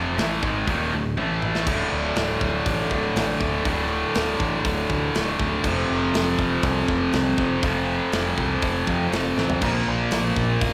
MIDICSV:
0, 0, Header, 1, 5, 480
1, 0, Start_track
1, 0, Key_signature, -1, "minor"
1, 0, Tempo, 496689
1, 1625, Time_signature, 4, 2, 24, 8
1, 10371, End_track
2, 0, Start_track
2, 0, Title_t, "Pipe organ"
2, 0, Program_c, 0, 19
2, 1608, Note_on_c, 0, 69, 59
2, 1610, Note_on_c, 0, 77, 67
2, 1611, Note_on_c, 0, 53, 68
2, 1612, Note_on_c, 0, 62, 59
2, 5417, Note_off_c, 0, 53, 0
2, 5417, Note_off_c, 0, 62, 0
2, 5454, Note_on_c, 0, 60, 63
2, 5459, Note_on_c, 0, 53, 73
2, 9253, Note_off_c, 0, 69, 0
2, 9257, Note_off_c, 0, 60, 0
2, 9260, Note_off_c, 0, 53, 0
2, 9308, Note_on_c, 0, 53, 65
2, 9312, Note_on_c, 0, 62, 59
2, 9319, Note_on_c, 0, 70, 56
2, 10371, Note_off_c, 0, 53, 0
2, 10371, Note_off_c, 0, 62, 0
2, 10371, Note_off_c, 0, 70, 0
2, 10371, Note_off_c, 0, 77, 0
2, 10371, End_track
3, 0, Start_track
3, 0, Title_t, "Distorted electric guitar"
3, 0, Program_c, 1, 30
3, 0, Note_on_c, 1, 41, 79
3, 0, Note_on_c, 1, 48, 84
3, 0, Note_on_c, 1, 53, 94
3, 169, Note_off_c, 1, 41, 0
3, 172, Note_off_c, 1, 48, 0
3, 174, Note_on_c, 1, 45, 88
3, 176, Note_off_c, 1, 53, 0
3, 179, Note_on_c, 1, 52, 85
3, 185, Note_on_c, 1, 57, 95
3, 412, Note_off_c, 1, 45, 0
3, 414, Note_off_c, 1, 52, 0
3, 417, Note_off_c, 1, 57, 0
3, 418, Note_on_c, 1, 44, 86
3, 422, Note_on_c, 1, 51, 87
3, 430, Note_on_c, 1, 56, 96
3, 654, Note_off_c, 1, 44, 0
3, 656, Note_off_c, 1, 51, 0
3, 660, Note_off_c, 1, 56, 0
3, 665, Note_on_c, 1, 39, 86
3, 668, Note_on_c, 1, 46, 81
3, 673, Note_on_c, 1, 51, 93
3, 896, Note_off_c, 1, 39, 0
3, 899, Note_off_c, 1, 46, 0
3, 900, Note_on_c, 1, 38, 54
3, 902, Note_off_c, 1, 51, 0
3, 903, Note_on_c, 1, 45, 70
3, 1094, Note_off_c, 1, 38, 0
3, 1096, Note_off_c, 1, 45, 0
3, 1131, Note_on_c, 1, 45, 93
3, 1139, Note_on_c, 1, 52, 89
3, 1146, Note_on_c, 1, 57, 99
3, 1611, Note_off_c, 1, 45, 0
3, 1614, Note_on_c, 1, 38, 85
3, 1615, Note_off_c, 1, 52, 0
3, 1619, Note_off_c, 1, 57, 0
3, 1629, Note_on_c, 1, 45, 95
3, 1639, Note_on_c, 1, 50, 89
3, 3273, Note_off_c, 1, 50, 0
3, 3285, Note_off_c, 1, 38, 0
3, 3285, Note_on_c, 1, 50, 81
3, 3292, Note_off_c, 1, 45, 0
3, 3302, Note_on_c, 1, 45, 74
3, 3315, Note_on_c, 1, 38, 73
3, 3506, Note_off_c, 1, 38, 0
3, 3517, Note_on_c, 1, 38, 81
3, 3520, Note_off_c, 1, 50, 0
3, 3523, Note_off_c, 1, 45, 0
3, 3534, Note_on_c, 1, 45, 86
3, 3549, Note_on_c, 1, 50, 91
3, 5194, Note_off_c, 1, 38, 0
3, 5195, Note_off_c, 1, 50, 0
3, 5203, Note_off_c, 1, 45, 0
3, 5207, Note_on_c, 1, 50, 92
3, 5221, Note_on_c, 1, 45, 72
3, 5237, Note_on_c, 1, 38, 68
3, 5439, Note_off_c, 1, 38, 0
3, 5440, Note_off_c, 1, 50, 0
3, 5443, Note_on_c, 1, 41, 91
3, 5447, Note_off_c, 1, 45, 0
3, 5462, Note_on_c, 1, 48, 91
3, 5475, Note_on_c, 1, 53, 91
3, 7116, Note_off_c, 1, 41, 0
3, 7117, Note_off_c, 1, 53, 0
3, 7121, Note_on_c, 1, 53, 78
3, 7126, Note_off_c, 1, 48, 0
3, 7138, Note_on_c, 1, 48, 71
3, 7158, Note_on_c, 1, 41, 70
3, 7354, Note_off_c, 1, 41, 0
3, 7365, Note_off_c, 1, 48, 0
3, 7366, Note_on_c, 1, 41, 82
3, 7383, Note_on_c, 1, 48, 95
3, 7392, Note_off_c, 1, 53, 0
3, 7396, Note_on_c, 1, 53, 98
3, 9038, Note_off_c, 1, 41, 0
3, 9047, Note_off_c, 1, 48, 0
3, 9053, Note_off_c, 1, 53, 0
3, 9056, Note_on_c, 1, 53, 87
3, 9071, Note_on_c, 1, 48, 79
3, 9082, Note_on_c, 1, 41, 70
3, 9289, Note_off_c, 1, 41, 0
3, 9291, Note_off_c, 1, 48, 0
3, 9293, Note_on_c, 1, 46, 86
3, 9310, Note_off_c, 1, 53, 0
3, 9310, Note_on_c, 1, 53, 86
3, 9324, Note_on_c, 1, 58, 95
3, 10371, Note_off_c, 1, 46, 0
3, 10371, Note_off_c, 1, 53, 0
3, 10371, Note_off_c, 1, 58, 0
3, 10371, End_track
4, 0, Start_track
4, 0, Title_t, "Picked electric bass"
4, 0, Program_c, 2, 34
4, 0, Note_on_c, 2, 29, 91
4, 159, Note_off_c, 2, 29, 0
4, 173, Note_on_c, 2, 33, 88
4, 402, Note_off_c, 2, 33, 0
4, 414, Note_on_c, 2, 32, 87
4, 642, Note_off_c, 2, 32, 0
4, 648, Note_on_c, 2, 27, 92
4, 879, Note_off_c, 2, 27, 0
4, 898, Note_on_c, 2, 26, 75
4, 1124, Note_off_c, 2, 26, 0
4, 1135, Note_on_c, 2, 33, 91
4, 1587, Note_off_c, 2, 33, 0
4, 1609, Note_on_c, 2, 26, 94
4, 1795, Note_off_c, 2, 26, 0
4, 1857, Note_on_c, 2, 26, 88
4, 2040, Note_off_c, 2, 26, 0
4, 2098, Note_on_c, 2, 26, 94
4, 2281, Note_off_c, 2, 26, 0
4, 2330, Note_on_c, 2, 26, 90
4, 2516, Note_off_c, 2, 26, 0
4, 2570, Note_on_c, 2, 33, 92
4, 2755, Note_off_c, 2, 33, 0
4, 2815, Note_on_c, 2, 26, 89
4, 2998, Note_off_c, 2, 26, 0
4, 3057, Note_on_c, 2, 33, 91
4, 3239, Note_off_c, 2, 33, 0
4, 3293, Note_on_c, 2, 26, 87
4, 3477, Note_off_c, 2, 26, 0
4, 3530, Note_on_c, 2, 26, 101
4, 3894, Note_off_c, 2, 26, 0
4, 4019, Note_on_c, 2, 26, 88
4, 4200, Note_off_c, 2, 26, 0
4, 4253, Note_on_c, 2, 33, 93
4, 4437, Note_off_c, 2, 33, 0
4, 4492, Note_on_c, 2, 26, 102
4, 4676, Note_off_c, 2, 26, 0
4, 4736, Note_on_c, 2, 38, 93
4, 4918, Note_off_c, 2, 38, 0
4, 4990, Note_on_c, 2, 26, 95
4, 5167, Note_off_c, 2, 26, 0
4, 5213, Note_on_c, 2, 26, 95
4, 5396, Note_off_c, 2, 26, 0
4, 5454, Note_on_c, 2, 29, 109
4, 5636, Note_off_c, 2, 29, 0
4, 5703, Note_on_c, 2, 29, 99
4, 5882, Note_off_c, 2, 29, 0
4, 5939, Note_on_c, 2, 29, 89
4, 6119, Note_off_c, 2, 29, 0
4, 6169, Note_on_c, 2, 29, 91
4, 6353, Note_off_c, 2, 29, 0
4, 6408, Note_on_c, 2, 36, 102
4, 6592, Note_off_c, 2, 36, 0
4, 6651, Note_on_c, 2, 29, 98
4, 6834, Note_off_c, 2, 29, 0
4, 6897, Note_on_c, 2, 36, 91
4, 7078, Note_off_c, 2, 36, 0
4, 7128, Note_on_c, 2, 29, 85
4, 7312, Note_off_c, 2, 29, 0
4, 7373, Note_on_c, 2, 29, 102
4, 7734, Note_off_c, 2, 29, 0
4, 7856, Note_on_c, 2, 29, 85
4, 8037, Note_off_c, 2, 29, 0
4, 8099, Note_on_c, 2, 36, 92
4, 8278, Note_off_c, 2, 36, 0
4, 8334, Note_on_c, 2, 29, 97
4, 8516, Note_off_c, 2, 29, 0
4, 8579, Note_on_c, 2, 41, 90
4, 8759, Note_off_c, 2, 41, 0
4, 8821, Note_on_c, 2, 29, 96
4, 9000, Note_off_c, 2, 29, 0
4, 9057, Note_on_c, 2, 33, 85
4, 9238, Note_off_c, 2, 33, 0
4, 9299, Note_on_c, 2, 34, 100
4, 9479, Note_off_c, 2, 34, 0
4, 9548, Note_on_c, 2, 34, 92
4, 9725, Note_off_c, 2, 34, 0
4, 9782, Note_on_c, 2, 34, 84
4, 9961, Note_off_c, 2, 34, 0
4, 10017, Note_on_c, 2, 34, 92
4, 10198, Note_off_c, 2, 34, 0
4, 10263, Note_on_c, 2, 29, 98
4, 10371, Note_off_c, 2, 29, 0
4, 10371, End_track
5, 0, Start_track
5, 0, Title_t, "Drums"
5, 176, Note_on_c, 9, 46, 59
5, 186, Note_on_c, 9, 38, 115
5, 272, Note_off_c, 9, 46, 0
5, 283, Note_off_c, 9, 38, 0
5, 413, Note_on_c, 9, 36, 101
5, 510, Note_off_c, 9, 36, 0
5, 652, Note_on_c, 9, 46, 57
5, 653, Note_on_c, 9, 36, 93
5, 749, Note_off_c, 9, 36, 0
5, 749, Note_off_c, 9, 46, 0
5, 1134, Note_on_c, 9, 48, 59
5, 1231, Note_off_c, 9, 48, 0
5, 1375, Note_on_c, 9, 45, 84
5, 1472, Note_off_c, 9, 45, 0
5, 1500, Note_on_c, 9, 38, 85
5, 1596, Note_off_c, 9, 38, 0
5, 1611, Note_on_c, 9, 36, 109
5, 1613, Note_on_c, 9, 49, 106
5, 1708, Note_off_c, 9, 36, 0
5, 1709, Note_off_c, 9, 49, 0
5, 2084, Note_on_c, 9, 46, 67
5, 2094, Note_on_c, 9, 38, 116
5, 2180, Note_off_c, 9, 46, 0
5, 2191, Note_off_c, 9, 38, 0
5, 2331, Note_on_c, 9, 36, 86
5, 2427, Note_off_c, 9, 36, 0
5, 2571, Note_on_c, 9, 36, 115
5, 2571, Note_on_c, 9, 46, 60
5, 2667, Note_off_c, 9, 36, 0
5, 2668, Note_off_c, 9, 46, 0
5, 2811, Note_on_c, 9, 36, 74
5, 2908, Note_off_c, 9, 36, 0
5, 3054, Note_on_c, 9, 46, 60
5, 3065, Note_on_c, 9, 38, 110
5, 3151, Note_off_c, 9, 46, 0
5, 3161, Note_off_c, 9, 38, 0
5, 3292, Note_on_c, 9, 36, 85
5, 3388, Note_off_c, 9, 36, 0
5, 3531, Note_on_c, 9, 36, 108
5, 3533, Note_on_c, 9, 46, 56
5, 3628, Note_off_c, 9, 36, 0
5, 3629, Note_off_c, 9, 46, 0
5, 4006, Note_on_c, 9, 46, 64
5, 4016, Note_on_c, 9, 38, 118
5, 4102, Note_off_c, 9, 46, 0
5, 4113, Note_off_c, 9, 38, 0
5, 4252, Note_on_c, 9, 36, 88
5, 4349, Note_off_c, 9, 36, 0
5, 4492, Note_on_c, 9, 36, 113
5, 4494, Note_on_c, 9, 46, 62
5, 4589, Note_off_c, 9, 36, 0
5, 4591, Note_off_c, 9, 46, 0
5, 4733, Note_on_c, 9, 36, 77
5, 4830, Note_off_c, 9, 36, 0
5, 4974, Note_on_c, 9, 46, 62
5, 4984, Note_on_c, 9, 38, 113
5, 5071, Note_off_c, 9, 46, 0
5, 5081, Note_off_c, 9, 38, 0
5, 5214, Note_on_c, 9, 36, 88
5, 5310, Note_off_c, 9, 36, 0
5, 5451, Note_on_c, 9, 36, 107
5, 5453, Note_on_c, 9, 49, 98
5, 5548, Note_off_c, 9, 36, 0
5, 5549, Note_off_c, 9, 49, 0
5, 5935, Note_on_c, 9, 46, 69
5, 5945, Note_on_c, 9, 38, 127
5, 6031, Note_off_c, 9, 46, 0
5, 6042, Note_off_c, 9, 38, 0
5, 6172, Note_on_c, 9, 36, 84
5, 6268, Note_off_c, 9, 36, 0
5, 6406, Note_on_c, 9, 46, 58
5, 6411, Note_on_c, 9, 36, 113
5, 6503, Note_off_c, 9, 46, 0
5, 6507, Note_off_c, 9, 36, 0
5, 6653, Note_on_c, 9, 36, 78
5, 6750, Note_off_c, 9, 36, 0
5, 6887, Note_on_c, 9, 46, 61
5, 6897, Note_on_c, 9, 38, 107
5, 6983, Note_off_c, 9, 46, 0
5, 6994, Note_off_c, 9, 38, 0
5, 7132, Note_on_c, 9, 36, 91
5, 7228, Note_off_c, 9, 36, 0
5, 7373, Note_on_c, 9, 36, 116
5, 7375, Note_on_c, 9, 46, 59
5, 7470, Note_off_c, 9, 36, 0
5, 7472, Note_off_c, 9, 46, 0
5, 7850, Note_on_c, 9, 46, 67
5, 7861, Note_on_c, 9, 38, 121
5, 7947, Note_off_c, 9, 46, 0
5, 7957, Note_off_c, 9, 38, 0
5, 8095, Note_on_c, 9, 36, 78
5, 8192, Note_off_c, 9, 36, 0
5, 8330, Note_on_c, 9, 46, 65
5, 8335, Note_on_c, 9, 36, 113
5, 8427, Note_off_c, 9, 46, 0
5, 8431, Note_off_c, 9, 36, 0
5, 8575, Note_on_c, 9, 36, 82
5, 8672, Note_off_c, 9, 36, 0
5, 8818, Note_on_c, 9, 46, 62
5, 8829, Note_on_c, 9, 38, 110
5, 8915, Note_off_c, 9, 46, 0
5, 8925, Note_off_c, 9, 38, 0
5, 9063, Note_on_c, 9, 38, 66
5, 9160, Note_off_c, 9, 38, 0
5, 9178, Note_on_c, 9, 43, 104
5, 9274, Note_off_c, 9, 43, 0
5, 9291, Note_on_c, 9, 57, 92
5, 9296, Note_on_c, 9, 36, 114
5, 9388, Note_off_c, 9, 57, 0
5, 9392, Note_off_c, 9, 36, 0
5, 9769, Note_on_c, 9, 46, 68
5, 9780, Note_on_c, 9, 38, 113
5, 9866, Note_off_c, 9, 46, 0
5, 9877, Note_off_c, 9, 38, 0
5, 10016, Note_on_c, 9, 36, 83
5, 10113, Note_off_c, 9, 36, 0
5, 10257, Note_on_c, 9, 46, 60
5, 10258, Note_on_c, 9, 36, 113
5, 10354, Note_off_c, 9, 36, 0
5, 10354, Note_off_c, 9, 46, 0
5, 10371, End_track
0, 0, End_of_file